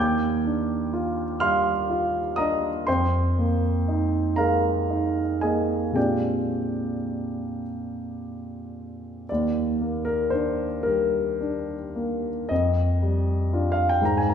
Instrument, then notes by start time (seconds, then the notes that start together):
grand piano
Already playing: D#2 G5 D6 G6
0.45 D4
0.93 F4
1.40 G3 F5 C6 F6
1.90 F4
2.36 D4 D#5 A#5 D#6
2.87 F2 C5 G5 C6
3.39 A#3
3.88 D#4
4.36 G#3 A#4 F5 A#5
4.90 D#4
5.41 A#3 G#4 D#5 G#5
5.92 A#2 G#3 C4 D4 G4 G5
5.96 F4 D5
9.29 D#2 D5
9.82 A#3
10.05 A#4
10.30 D4 C5
10.83 G3 A#4
11.40 D4
11.96 A#3
12.49 F2 D#5
13.02 G3
13.53 D4 F4
13.72 F5
13.89 G5
14.02 G#2 A#5
14.17 G#5
14.29 A#5